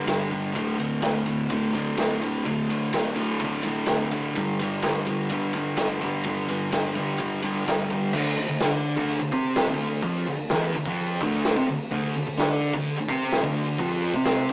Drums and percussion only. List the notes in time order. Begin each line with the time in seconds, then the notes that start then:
0.07 snare, ride
0.31 kick, ride
0.55 kick, ride
0.80 ride
1.02 snare, ride
1.26 ride
1.50 kick, ride
1.74 ride
1.97 snare, ride
2.21 kick, ride
2.45 kick, ride
2.70 ride
2.93 snare, ride
3.05 snare
3.15 ride
3.40 kick, ride
3.63 ride
3.86 snare, ride
4.11 kick, ride
4.36 kick, ride
4.59 ride
4.82 snare, ride
4.95 snare
5.07 ride
5.29 kick, ride
5.53 ride
5.77 snare, ride
6.01 kick, ride
6.24 kick, ride
6.48 ride
6.72 snare, ride
6.95 ride
7.18 kick, ride
7.42 ride
7.68 snare, ride
7.90 kick, ride
8.13 kick, crash
8.37 open hi-hat
8.60 snare, open hi-hat
8.85 open hi-hat
8.97 kick
9.08 open hi-hat
9.32 kick, open hi-hat
9.55 snare, open hi-hat
9.68 kick
9.78 open hi-hat
10.02 kick, open hi-hat
10.25 open hi-hat
10.49 snare, open hi-hat
10.73 open hi-hat
10.86 kick
10.98 open hi-hat
11.21 kick, open hi-hat
11.44 snare, open hi-hat
11.56 kick, snare
11.69 open hi-hat
11.91 kick, open hi-hat
12.15 open hi-hat
12.39 snare, open hi-hat
12.62 open hi-hat
12.74 kick
12.86 open hi-hat
13.09 kick, open hi-hat
13.32 snare, open hi-hat
13.44 kick
13.55 open hi-hat
13.78 kick, open hi-hat
14.02 open hi-hat
14.14 kick
14.25 snare, open hi-hat
14.49 kick, open hi-hat